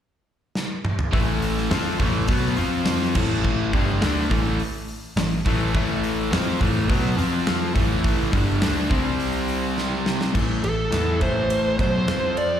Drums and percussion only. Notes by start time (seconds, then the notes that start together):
0.55 snare
0.85 mid tom
0.99 floor tom
1.13 kick, open hi-hat
1.42 open hi-hat
1.57 snare
1.71 snare, open hi-hat
1.99 kick, open hi-hat
2.28 kick, open hi-hat
2.57 open hi-hat
2.85 snare, open hi-hat
3.01 snare
3.15 kick, crash
3.45 kick
3.73 kick, open hi-hat
4.02 snare, open hi-hat
4.31 kick, open hi-hat
4.60 open hi-hat
4.88 open hi-hat
5.17 snare, open hi-hat
5.46 kick, open hi-hat
5.75 kick, open hi-hat
6.04 open hi-hat
6.33 snare, open hi-hat
6.61 kick, open hi-hat
6.90 kick, open hi-hat
7.19 open hi-hat
7.47 snare, open hi-hat
7.76 kick, open hi-hat
8.04 kick, open hi-hat
8.33 kick, open hi-hat
8.62 snare, open hi-hat
8.91 kick, open hi-hat
9.20 open hi-hat
9.48 open hi-hat
9.78 snare
10.06 snare
10.21 snare
10.35 kick, crash
10.64 ride
10.92 snare, ride
11.21 kick, ride
11.50 ride
11.79 kick, ride
12.08 snare, ride
12.37 ride